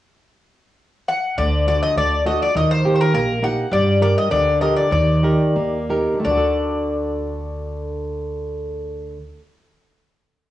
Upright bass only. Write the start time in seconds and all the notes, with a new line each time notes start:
1.38 D2
1.96 D2
2.55 D#2
3.13 A#1
3.71 G2
4.31 D2
4.91 D#2
5.56 D#2
6.25 D2